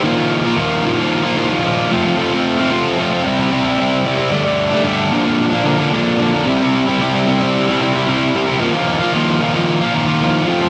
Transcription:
0.03 D#3 F3 A#3 F4
0.16 F3 A#3 F4
0.44 F3 A#3 F4
0.57 D#3 F3 A#3 F4
0.83 D#3 F3 A#3 F4
0.97 F3 A#3 F4
1.23 F3 A#3 F4
1.36 D#3 F3 A#3 F4
1.50 F3 A#3 F4
1.64 D#3 F3 A#3 F4
1.91 F3 A3 C4 F4
2.04 A3 C4 F4
2.17 F3 A3 C4
2.21 F4
2.31 A3 C4 F4
2.58 A3 C4 F4
2.71 F3 A3 C4 F4
2.97 F3 A3 C4 F4
3.10 C4 F4
3.14 A3
3.24 C3 G3 C4 E4
3.38 G3 C4 E4
3.50 C3 G3 C4 E4
3.64 G3 C4 E4
3.78 C3 G3 C4 E4
4.05 C3 G3 C4 E4
4.18 G3 C4 E4
4.31 D3 G3 A3 D4
4.45 G3 A3 D4
4.71 G3 A3 D4
4.84 D3 G3 A3 D4
5.11 A#2 D3 F3 A#3 D4
5.24 F3 A#3 D4
5.51 F3 A#3 D4
5.64 D3 F3 A#3 D4
5.78 F3 A#3 D4
5.92 A#2 D3 F3 A#3 D4
6.19 D3 F3 A#3 D4
6.32 F3 A#3 D4
6.46 C3 G3 C4 E4
6.60 G3 C4 E4
6.86 G3 C4 E4
7.00 C3 G3 C4 E4
7.26 C3 G3 C4 E4
7.40 G3 C4 E4
7.67 G3 C4 E4
7.80 C3 G3 C4 E4
7.94 G3 C4 E4
8.06 C3 G3 C4 E4
8.34 C3 G3 C4 E4
8.47 G3 C4 E4
8.60 D#3 F3 A#3 F4
8.73 F3 A#3 F4
9.00 F3 A#3 F4
9.13 D#3 F3 A#3 F4
9.40 D#3 F3 A#3 F4
9.54 F3 A#3 F4
9.81 F3 A#3 F4
9.93 D#3 F3 A#3 F4
10.06 F3 A#3 F4
10.20 D#3 F3 A#3 F4
10.47 F3 A3 C4 F4
10.61 A3 C4 F4

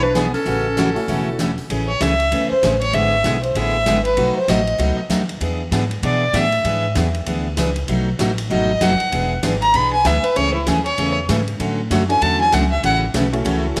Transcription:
Already playing: B1
0.03 D4 B4
0.15 E3 B3 D4 G#4, snare, closed hi-hat
0.33 C#4 A4, open hi-hat
0.46 A1 C#3 E3 A3 C#4 F#4, open hi-hat
0.77 C#3 E3 A3 C#4 F#4, snare, closed hi-hat
0.95 A3 C#4 E4 F#4, open hi-hat
1.08 E1 C#3 E3 A3 C#4 F#4, open hi-hat
1.39 C#3 E3 A3 C#4 F#4, snare, closed hi-hat
1.58 open hi-hat
1.70 A1 C#3 E3 A3 C#4 G#4, ride
1.89 C#5
2.00 C#2 C#3 E3 A3 C#4 G#4 E5, snare, hi-hat pedal, ride
2.20 ride
2.31 E2 C#3 E3 A3 C#4 G#4, ride
2.50 C5, muted upright bass stroke
2.63 A1 C#3 E3 A3 C#4 G#4, snare, hi-hat pedal, ride
2.81 C#5, ride
2.93 G#1 D3 G#3 B3 E4 G#4 E5, ride
3.24 B1 D3 G#3 B3 E4 G#4, snare, hi-hat pedal, ride
3.43 C5, ride
3.55 A1 D3 G#3 B3 E4 G#4 E5, ride
3.86 G#1 D3 G#3 B3 E4 G#4, snare, hi-hat pedal, ride
4.05 B4, ride
4.17 B1 B2 F#3 A3 D#4 F#4, ride
4.36 C5, muted upright bass stroke
4.48 A1 B2 F#3 A3 D#4 F#4 D#5, snare, hi-hat pedal, ride
4.67 ride
4.78 C#2 B2 F#3 A3 D#4 F#4, ride
4.98 muted upright bass stroke
5.09 D#2 B2 F#3 A3 D#4 F#4, snare, hi-hat pedal, ride
5.29 ride
5.41 E2 E3 B3 D4 G#4, ride
5.71 G#2 E3 B3 D4 G#4, snare, hi-hat pedal, ride
5.91 ride
6.03 B2 E3 B3 D4 G#4 D5, ride
6.33 A2 E3 B3 D4 G#4 E5, snare, hi-hat pedal, ride
6.52 ride
6.64 G#2 E3 B3 D4 G#4, ride
6.95 E2 E3 B3 D4 G#4, snare, hi-hat pedal, ride
7.14 ride
7.26 D2 E3 B3 D4 G#4, ride
7.57 C#2 E3 B3 D4 G#4, snare, hi-hat pedal, ride
7.76 ride
7.88 B1 B2 F#3 A3 D#4 F#4, ride
8.19 A1 B2 F#3 A3 D#4 F#4, snare, hi-hat pedal, ride
8.38 ride
8.50 G#1 B2 F#3 A3 D#4 F#4 D#5
8.81 F#1 B2 F#3 A3 D#4 F#4 F#5, snare, hi-hat pedal, ride
9.00 muted upright bass stroke, ride
9.12 E1 E3 B3 D4 G#4, ride
9.43 G#1 E3 B3 D4 G#4, snare, hi-hat pedal, ride
9.62 A#5, ride
9.74 B1 E3 B3 D4 G#4 B5, ride
9.93 G#5
10.05 D2 E3 B3 D4 G#4 E5, snare, hi-hat pedal, ride
10.23 B4, muted upright bass stroke, ride
10.36 C#2 C#3 E3 A3 C#4 G#4 C#5, ride
10.54 E4
10.66 D#2 C#3 E3 A3 C#4 G#4, snare, hi-hat pedal, ride
10.86 C#5, ride
10.98 E2 C#3 E3 A3 C#4 G#4, ride
11.29 G#2 C#3 E3 A3 C#4 G#4, snare, hi-hat pedal, ride
11.47 ride
11.60 A2 D3 F#3 A3 C#4 F#4, ride
11.90 F#2 D3 F#3 A3 C#4 F#4, snare, hi-hat pedal, ride
12.09 C#4 D4 E4 F#4 A4 G#5, ride
12.21 E2 D3 F#3 A3 C#4 F#4 A5, ride
12.41 G#5
12.52 C#2 D3 F#3 A3 C#4 F#4 F#5, snare, hi-hat pedal, ride
12.71 E5
12.83 A1 C#3 E3 A3 C#4 F#4 F#5, ride
13.14 B1 C#3 E3 A3 C#4 F#4, snare, hi-hat pedal, ride
13.33 A3 C#4 E4 F#4 A4, ride
13.45 C#2 C#3 E3 A3 C#4 F#4, ride
13.76 A1 C#3 E3 A3 C#4 E4 F#4 A4, snare, hi-hat pedal, ride

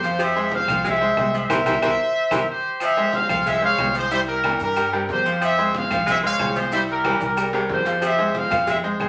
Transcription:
Already playing: F2 G4 C5
0.03 F3 F4 F5, cowbell, high conga, low agogo, maracas
0.19 F3 C5 E5, cowbell, high conga, low agogo, claves, maracas
0.35 G#3 G#4 C5, high conga, low agogo, maracas
0.52 C5 F5, cowbell, high conga, low timbale, maracas
0.68 C2 F3 F4 F5, cowbell, low conga, low agogo, claves, maracas
0.84 G#3 C5 E5, cowbell, high conga, low conga, low agogo, maracas
1.01 G#3 G#4 C5, high conga, maracas
1.17 C2 G#3 G#4 C5, cowbell, high conga, low timbale, low agogo, claves, maracas
1.34 F3 C5 E5, maracas
1.49 C2 E3 G4 A#4 C5, cowbell, high conga, high timbale, claves, maracas
1.66 C2 E3 G4 A#4 C5, cowbell, high conga, high timbale, claves, maracas
1.82 C2 E3 G4 A#4 C5, cowbell, high conga, high timbale, claves, maracas
2.31 C2 E3 G4 A#4 C5, cowbell, high conga, high timbale, claves, maracas
2.49 G4 C5
2.80 F3 C5 E5, high conga, low agogo, claves, maracas
2.97 G#3 G#4 C5, high conga, low agogo, maracas
3.13 C5 F5, high conga, low timbale, maracas
3.29 C2 F3 F4 F5, low conga, low agogo, claves, maracas
3.45 G#3 C5 E5, high conga, low conga, low agogo, maracas
3.62 G#3 G#4 C5 C#5 F5, high conga, maracas
3.78 C2 G#3 G#4 C5, high conga, low timbale, low agogo, claves, maracas
3.95 F3 G#4 C5, high conga, maracas
4.11 G3 E4 G4 C5 E5, high conga, low agogo, maracas
4.28 G4 A#4, high conga, low agogo, maracas
4.44 E3 G3 G4 A#4, high conga, low timbale, low agogo, claves, maracas
4.60 G2 G4 A#4, high conga, maracas
4.76 G3 G4 A#4, high conga, low agogo, claves, maracas
4.92 C3 G3 G4 A#4, high conga, low agogo, maracas
5.09 F2 G4 C5, high conga, low timbale, maracas
5.25 F3 F4 F5, high conga, low agogo, maracas
5.41 F3 C5 E5, high conga, low agogo, claves, maracas
5.58 G#3 G#4 C5, high conga, low agogo, maracas
5.74 C5 F5, high conga, low timbale, maracas
5.90 C2 F3 F4 F5, low conga, low agogo, claves, maracas
6.06 G#3 C5 E5, high conga, low conga, low agogo, maracas
6.23 G#3 G#4 C5 C#5 F5, high conga, maracas
6.39 C2 G#3 G#4 C5, high conga, low timbale, low agogo, claves, maracas
6.55 F3 G#4 C5, high conga, maracas
6.72 G3 E4 G4 C5 E5, high conga, low agogo, maracas
6.88 G4 A#4, high conga, low agogo, maracas
7.04 E3 G3 G4 A#4, high conga, low timbale, low agogo, claves, maracas
7.20 C2 G4 A#4, high conga, high timbale, maracas
7.37 G3 G4 A#4, high conga, low timbale, low agogo, claves, maracas
7.53 C3 G3 G4 A#4, high conga, low timbale, low agogo, maracas
7.69 F2 G4 C5, high conga, low timbale, maracas
7.85 F3 F4 F5, high conga, low timbale, low agogo, maracas
8.01 F3 C5 E5, cowbell, high conga, low agogo, claves, maracas
8.18 G#3 G#4 C5, high conga, low agogo, maracas
8.34 C5 F5, cowbell, high conga, low timbale, maracas
8.50 F2 F3 F4 F5, cowbell, low conga, low agogo, claves, maracas
8.67 G#3 C5 E5, cowbell, high conga, low conga, low agogo, maracas
8.83 G#3 G#4 C5, high conga, maracas
9.00 C2 G#3 G#4 C5, cowbell, high conga, low timbale, low agogo, claves, maracas

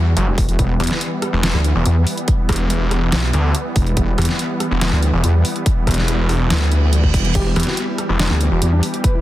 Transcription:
Already playing: E2 E3 G3 F#4
0.17 F#1, closed hi-hat
0.27 E1
0.38 kick, open hi-hat
0.49 E1, closed hi-hat
0.59 E1 B3, kick, closed hi-hat
0.80 E2, cross-stick, closed hi-hat
0.84 closed hi-hat
0.87 snare, closed hi-hat
1.01 closed hi-hat
1.22 cross-stick, closed hi-hat
1.33 E1
1.43 snare, closed hi-hat
1.54 D2
1.64 closed hi-hat
1.75 E1
1.86 E2, closed hi-hat
2.07 open hi-hat
2.18 closed hi-hat
2.28 kick, closed hi-hat
2.49 E1, kick, cross-stick, closed hi-hat
2.52 closed hi-hat
2.56 closed hi-hat
2.70 closed hi-hat
2.91 E1, cross-stick, closed hi-hat
3.12 B1, snare, closed hi-hat
3.33 D2, closed hi-hat
3.55 closed hi-hat
3.76 E1, kick, open hi-hat
3.87 closed hi-hat
3.97 E1, kick, closed hi-hat
4.18 E2, cross-stick, closed hi-hat
4.22 closed hi-hat
4.25 snare, closed hi-hat
4.39 closed hi-hat
4.60 cross-stick, closed hi-hat
4.71 E1
4.81 snare, closed hi-hat
4.92 D2
5.03 closed hi-hat
5.13 E1
5.24 E2, closed hi-hat
5.45 open hi-hat
5.56 closed hi-hat
5.66 kick, closed hi-hat
5.87 E1, kick, cross-stick, closed hi-hat
5.91 closed hi-hat
5.94 snare, closed hi-hat
6.08 closed hi-hat
6.29 E1, cross-stick, open hi-hat
6.50 D2, snare, closed hi-hat, reverse cymbal
6.72 closed hi-hat
6.93 closed hi-hat
7.04 kick
7.14 E1, kick, open hi-hat
7.25 closed hi-hat
7.35 E1 G4, kick, closed hi-hat, crash
7.46 B3
7.56 E2 B3, cross-stick, closed hi-hat
7.60 closed hi-hat
7.63 F#4, snare, closed hi-hat
7.77 B3, closed hi-hat
7.88 B3
7.98 cross-stick, closed hi-hat
8.09 E1 B3
8.20 D4, snare, closed hi-hat
8.30 D2 B3
8.41 B3, closed hi-hat
8.51 E1 F#4
8.62 E2 B3, closed hi-hat
8.72 D4
8.83 B3, open hi-hat
8.94 B3, closed hi-hat
9.04 B4, kick, closed hi-hat
9.15 E4

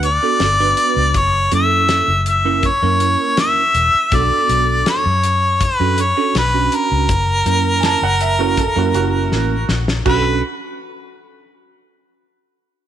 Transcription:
Already playing: D2
0.03 D5, closed hi-hat
0.23 B3 D4 F#4 A4
0.40 G1, snare, closed hi-hat
0.60 B3 D4 F#4 B4
0.77 closed hi-hat
0.97 C#2
1.14 F#1 C#5, kick, closed hi-hat
1.52 F#2 A#3 C#4 E4 A4 E5, closed hi-hat
1.89 snare, closed hi-hat
2.08 F#1
2.26 E5, closed hi-hat
2.45 A#3 C#4 E4 A#4
2.63 C#5, kick, closed hi-hat
2.82 F#2 A#3 C#4 E4 A#4
3.00 closed hi-hat
3.37 E5, snare, closed hi-hat
3.74 E1, closed hi-hat
3.94 muted fingered electric bass stroke
4.12 B1 B3 D4 F#4 A4 D5, kick, closed hi-hat
4.49 B1, closed hi-hat
4.86 C#5, snare, closed hi-hat
5.06 F#2
5.24 closed hi-hat
5.61 B4, kick, closed hi-hat
5.80 F#2 C#4 D4 F#4 A4
5.98 C#5, closed hi-hat
6.17 C#4 D4 F#4 A4
6.35 B1 B4, snare, closed hi-hat
6.54 C#4 D4 F#4
6.72 A#4, closed hi-hat
6.92 C#2
7.09 F#1, kick, closed hi-hat
7.46 F#2 A#3 C#4 E4 A#4, closed hi-hat
7.80 G#5, snare, closed hi-hat
7.85 A5
8.02 F#1 F#5
8.21 E5, closed hi-hat
8.39 A#3 C#4 E4 F#4 A#4
8.57 A4, kick, closed hi-hat
8.76 F#2 A#3 C#4 E4 F#4 A#4
8.94 F#1 F#4, closed hi-hat
9.32 A1, snare
9.69 A#1, snare
9.88 snare
10.05 B1 C#4 D4 F#4 A4 B4, kick, crash

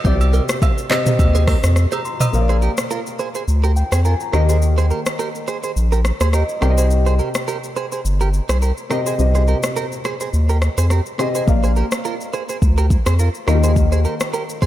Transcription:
Already playing: C3 C4 G4 C5 F5
0.04 C2 C3 C4 G4 C5 D5, kick, shaker
0.21 high agogo, shaker
0.33 G4 A#4, shaker
0.49 cross-stick, shaker
0.62 kick, high agogo, low woodblock, shaker
0.78 shaker
0.89 C3 C4 G4 C5 D#5, cross-stick, clap, high agogo, shaker
1.05 C3 C4 G4 D#5, mid tom, shaker
1.19 D#2, kick, high agogo, shaker
1.35 G#4 C5, shaker
1.48 G4 A#4, kick, cross-stick, open hi-hat, high agogo, shaker
1.64 F2, cross-stick, shaker
1.76 cross-stick, shaker
1.92 G#4 C5 A#5, high agogo, shaker
2.05 C6, shaker
2.20 C5 D#5 D#6, mid tom, high agogo, shaker
2.32 A#1 A#3 A#4 C5 F5, shaker
2.40 D5
2.49 G#4 C5, shaker
2.62 G4 A#4, shaker
2.77 cross-stick, shaker
2.91 F4 A#4, shaker
3.07 shaker
3.19 G#4 C5, shaker
3.35 G#4 C5, shaker
3.48 D2, shaker
3.64 G4 A#4, shaker
3.76 G5, shaker
3.92 F2 G#4 C5, cross-stick, shaker
4.05 F4 A#4 G#5, shaker
4.20 A#5, shaker
4.32 D#2 D#3 A#3 G4 A#4 D#5, cross-stick, shaker
4.49 G#4 C5, shaker
4.62 shaker
4.78 G#4 C5, shaker
4.90 G4 A#4, shaker
5.06 cross-stick, shaker
5.19 G4 A#4, shaker
5.35 shaker
5.48 G#4 C5, shaker
5.63 G#4 C5, shaker
5.76 A#1, shaker
5.92 G4 A#4, shaker
6.05 cross-stick, shaker
6.21 D#2 G#4 C5, cross-stick, shaker
6.33 G4 A#4 D#5, cross-stick, shaker
6.49 shaker
6.61 C2 C3 C4 G4 A#4 D5 G5, cross-stick, shaker
6.70 D#5
6.78 G#4 C5, shaker
6.91 shaker
7.06 G#4 C5, shaker
7.19 G4 A#4, shaker
7.34 cross-stick, shaker
7.48 G4 A#4, shaker
7.64 shaker
7.76 G#4 C5, shaker
7.92 G#4 C5, shaker
8.05 G1, shaker
8.21 G4 A#4, shaker
8.34 shaker
8.49 C2 G#4 C5, cross-stick, shaker
8.62 G4 A#4, shaker
8.77 shaker
8.89 C3 C4 G4 A#4 D#5, cross-stick, shaker
9.06 G#4 C5, shaker
9.18 C2 C3 C4 G4 D#5, shaker
9.35 G#4 C5, shaker
9.48 G4 A#4, shaker
9.63 cross-stick, shaker
9.76 G4 A#4, shaker
9.92 shaker
10.05 G#4 C5, cross-stick, shaker
10.20 G#4 C5, shaker
10.33 D#2, shaker
10.49 G4 A#4, shaker
10.62 cross-stick, shaker
10.78 F2 G#4 C5, shaker
10.90 G4 A#4, cross-stick, shaker
11.06 shaker
11.18 C3 C4 G4 G#4 C5 D#5, cross-stick, shaker
11.35 G#4 C5, shaker
11.46 A#1 A#3 A#4 D5 F5, kick, shaker
11.64 G#4 C5, shaker
11.76 G4 A#4, shaker
11.91 cross-stick, shaker
12.05 F4 A#4, shaker
12.21 shaker
12.33 G#4 C5, shaker
12.49 G#4 C5, shaker
12.62 D2, kick, shaker
12.78 G4 A#4, shaker
12.90 kick, shaker
13.06 F2 G#4 C5, cross-stick, shaker
13.19 F4 A#4, shaker
13.35 shaker
13.46 D#2 D#3 A#3 F4 G4 A#4 D#5, cross-stick, shaker
13.55 G4
13.64 G#4 C5, shaker
13.76 kick, shaker
13.92 G#4 C5, shaker
14.05 G4 A#4, shaker
14.20 cross-stick, shaker
14.34 G4 A#4, shaker
14.49 shaker
14.62 G#4 C5, kick, shaker

